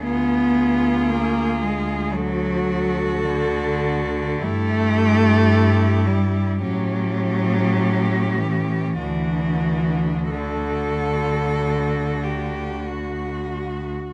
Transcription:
X:1
M:4/4
L:1/8
Q:1/4=51
K:D
V:1 name="Cello"
_A4 =A4 | G4 G4 | F2 F6 |]
V:2 name="Cello"
=F4 ^F4 | E4 C4 | D2 A3 G F2 |]
V:3 name="Cello" clef=bass
B,2 _B, _A, F,2 D,2 | A,3 G, F,3 E, | E,2 D,4- D, z |]
V:4 name="Cello" clef=bass
D,,8 | G,,4 A,,4 | D,,8 |]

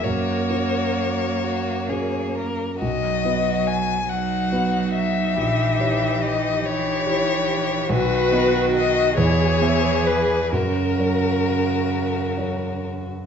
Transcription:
X:1
M:6/8
L:1/16
Q:3/8=46
K:B
V:1 name="Violin"
c8- c2 z2 | d4 g2 f4 e2- | e4 d2 c6 | B4 d2 c4 B2 |
A8- A2 z2 |]
V:2 name="Viola"
A8- A z3 | z6 D6- | D12 | F6 G6 |
A8- A z3 |]
V:3 name="Grand piano"
F,,2 [CFA]6 [CFA]4 | B,,,2 [B,FB]6 [B,FB]4 | A,,,2 [E=Gc]6 [EGc]4 | B,,,2 [B,Fd]4 E,,2 [B,Ge]4 |
F,,2 [F,Fc]6 [F,Fc]4 |]
V:4 name="Violin"
F6 F2 G2 A2 | F6 F6 | =G6 G6 | F6 G6 |
F8- F3 z |]
V:5 name="Cello" clef=bass
A,8- A,3 z | F,6 F,6 | E,6 E,6 | D,6 E,6 |
C,8- C,3 z |]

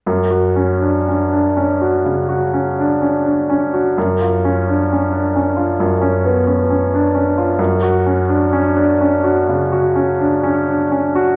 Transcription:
X:1
M:4/4
L:1/16
Q:1/4=63
K:C#phr
V:1 name="Grand piano"
F,, F C D C D C F C, F C D C D C F | F,, ^E C D C D C E F,, C B, C C D C E | F,, F C D C D C F C, F C D C D C F |]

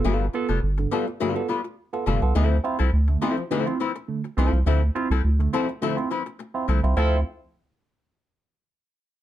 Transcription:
X:1
M:4/4
L:1/16
Q:1/4=104
K:Ddor
V:1 name="Horn section"
z16 | z16 | z16 | [F,EA]2 z12 z2 |]
V:2 name="Tine electric piano"
[G,,D,] z [B,FA] [FA] [FA] [G,,D,] [B,FA] z [G,,D,] [B,FA] [FA] z2 [B,FA] [G,,D,] [B,FA] | [D,A,] z [CEF] [EF] [EF] [D,A,] [CEF] z [D,A,] [CEF] [EF] z [D,A,] z [CEF] [EF] | [D,A,] z [CEF] [EF] [EF] [D,A,] [CEF] z [D,A,] [CEF] [EF] z2 [CEF] [D,A,] [CEF] | [CEF]2 z12 z2 |]
V:3 name="Hollow-body jazz guitar"
[G,B,FA] z2 [G,B,FA] z2 [G,B,FA] z [G,B,FA] z [G,B,FB] z3 [G,B,FA] z | [F,CEA] z2 [F,CEA] z2 [F,CEA] z [F,CEA] z [F,CEB] z3 [F,CEA] z | [F,CEA] z2 [F,CEA] z2 [F,CEA] z [F,CEA] z [F,CEB] z3 [F,CEA] z | [F,CEA] z12 z3 |]
V:4 name="Analog synth bass" clef=bass
G,,,2 z F,,, G,,,2 z8 F,,, C,, | D,,2 z C,, D,,2 z8 C,, C,, | D,,2 z C,, D,,2 z8 C,, C,, | D,,2 z12 z2 |]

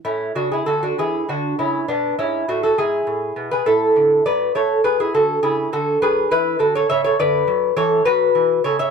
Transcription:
X:1
M:6/8
L:1/16
Q:3/8=68
K:A
V:1 name="Lute"
[CE]2 [DF] [EG] [FA] [DF] [EG]2 [DF]2 [CE]2 | [B,D]2 [CE]2 [DF] [FA] [EG]4- [EG] [GB] | [EA]4 [Bd]2 [Ac]2 [GB] [EG] [FA]2 | [EG]2 [FA]2 [GB]2 [EB]2 [FA] [Ac] [ce] [Ac] |
[Bd]4 [Ac]2 [FB]4 [Ac] [ce] |]
V:2 name="Lute" clef=bass
A,,2 C,2 D,2 E,2 D,2 C,2 | B,,2 G,,2 A,,2 G,,2 A,,2 B,,2 | A,,2 D,2 F,2 A,2 F,2 D,2 | C,2 D,2 F,2 E,2 D,2 C,2 |
D,2 F,2 E,2 F,2 E,2 C,2 |]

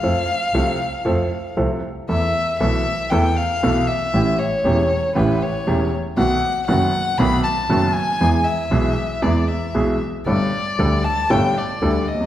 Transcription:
X:1
M:4/4
L:1/16
Q:1/4=117
K:Ephr
V:1 name="Violin"
f12 z4 | e4 e4 g2 f4 e2- | e2 ^c6 B2 c4 z2 | ^f4 f4 b2 a4 ^g2- |
^g2 e6 d2 e4 z2 | d6 a2 g2 d4 ^d2 |]
V:2 name="Upright piano" clef=bass
[F,,F,A,CA]2 z2 [C,,C,F,A,CA]2 z2 [F,,F,A,CA]2 z2 [C,,C,F,A,CA]2 z2 | [E,,E,A,B,A]2 z2 [B,,,B,,E,A,B,A]2 z2 [E,,E,A,B,A]2 z2 [B,,,B,,E,A,B,A]2 z2 | [A,,,A,,E,A,^CG]2 z2 [E,,,E,,E,A,CG]2 z2 [A,,,A,,E,A,CG]2 z2 [E,,,E,,E,A,CG]2 z2 | [B,,,B,,^D,A,B,^F]2 z2 [^F,,,^F,,D,A,B,F]2 z2 [B,,,B,,D,A,B,F]2 z2 [F,,,F,,D,A,B,F]2 z2 |
[E,,E,^G,B,^G]2 z2 [B,,,B,,E,G,B,G]2 z2 [E,,E,G,B,G]2 z2 [B,,,B,,E,G,B,G]2 z2 | [G,,,G,,G,A,DA]2 z2 [D,,D,G,A,DA]2 z2 [G,,,G,,G,A,DA]2 z2 [D,,D,G,A,DA]2 z/2 ^D,,/2 E,,/2 z/2 |]
V:3 name="Double bass" clef=bass
F,,2 z2 C,,2 z2 F,,2 z2 C,,2 z2 | E,,2 z2 B,,,2 z2 E,,2 z2 B,,,2 z2 | A,,,2 z2 E,,,2 z2 A,,,2 z2 E,,,2 z2 | B,,,2 z2 ^F,,,2 z2 B,,,2 z2 F,,,2 z2 |
E,,2 z2 B,,,2 z2 E,,2 z2 B,,,2 z2 | G,,,2 z2 D,,2 z2 G,,,2 z2 D,,2 z2 |]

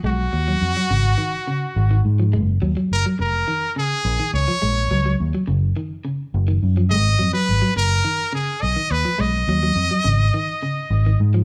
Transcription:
X:1
M:4/4
L:1/16
Q:1/4=105
K:G#dor
V:1 name="Trumpet"
F12- F2 z2 | z4 A2 A4 G4 c2- | c4 z12 | d3 B3 A4 G2 d2 B2 |
d12- d2 z2 |]
V:2 name="Clean electric guitar" clef=bass
G,2 z F,2 F, C,2 D,2 C,2 z D,2 E, | G,2 F, F,2 F, z2 D,2 C,2 z D,2 E, | G,2 F, F,2 F, C,2 D,2 C,2 z D,2 E, | G,2 F, F,2 F, z2 D,2 C,2 z D,2 E, |
G,2 F, F,2 F, C,2 D,2 C,2 z D,2 E, |]
V:3 name="Fingered electric bass" clef=bass
B,,,2 D,,2 E,, z G,,,2 z4 G,,,2 G,,2 | F,,,2 D,, z F,,, z E,,,2 z4 A,,, z C,, z | A,,,2 C,,2 D,, z F,,,2 z4 F,,,2 F,,2 | G,,,2 E,, z G,,, z F,,,2 z4 B,,, z D,, z |
B,,,2 D,,2 E,, z G,,,2 z4 G,,,2 G,,2 |]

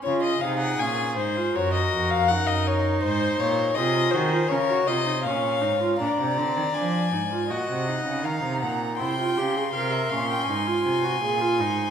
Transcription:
X:1
M:4/4
L:1/16
Q:1/4=80
K:Db
V:1 name="Violin"
d e f g a2 c2 d e2 f g e d2 | c2 d2 e2 c2 d2 e2 f4 | b4 a4 g4 b4 | c'16 |]
V:2 name="Violin"
A8 B8 | c4 A4 B2 c2 d4 | =d8 e4 f2 g2 | =g4 f =e f g a8 |]
V:3 name="Viola"
F2 E2 D2 E F G4 E4- | E4 F2 G F D G F E D2 E F | =D2 C2 D2 E F G2 E6 | =E F =G A B2 D2 _E F2 _G A F E2 |]
V:4 name="Cello" clef=bass
D,2 C,2 B,,2 A,,2 G,,2 F,,2 G,,4 | A,,2 B,,2 C,2 E,2 D,2 C,2 B,,2 A,,2 | B,, C, =D, E, F,2 A,,2 B,, C,2 _D, E, C, B,,2 | C,2 D,2 C,2 B,,2 A,,2 C,2 B,,2 A,,2 |]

